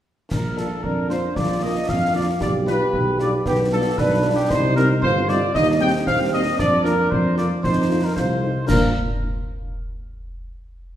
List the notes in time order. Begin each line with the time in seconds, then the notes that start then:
0.31 A#1 A#4, concert bass drum, snare, crash
0.57 A#3 D4 F4 A4, snare
0.83 F2 D4 A#4, concert bass drum
1.09 A#3 D4 F4 C5, snare
1.36 A#1 F4 D5, concert bass drum, snare
1.62 A#3 D4 F4 D#5
1.89 F2 F5, concert bass drum, snare
2.15 A#3 D4 F4 D5
2.41 B1 G4 D5, concert bass drum, snare
2.67 G3 D4 F4 B4, snare
2.93 B1, concert bass drum
3.19 G3 D4 F4 D5, snare
3.46 B1 B3 G4, concert bass drum, snare
3.72 G3 D4 F4 A4
3.98 B1 D4 B4, concert bass drum, snare
4.24 G3 D4 F4
4.34 G4
4.50 C2 D#4 C5, concert bass drum, snare, crash
4.76 G3 C4 D#4 A#4, snare
5.01 G1 F4 C5, concert bass drum
5.28 G3 C4 D#4 D5, snare
5.55 D#2 D#4 D#5, concert bass drum, snare
5.80 G3 C4 G4 G5
6.07 D#2 C4 F5, concert bass drum, snare
6.32 G3 C4 G4 D#5
6.58 F2 D4 D5, concert bass drum, snare
6.84 A#3 D4 F4 A#4, snare
7.11 F2 C5, concert bass drum
7.37 A#3 D4 F4 D5, snare
7.63 F2 D#4 C5, concert bass drum, snare
7.89 A3 D#4 F4
8.03 A#4
8.15 C2 F4 C5, concert bass drum, snare
8.42 A3 D#4 F4
8.67 A#2 A#3 D4 F4 A#4, concert bass drum, snare, crash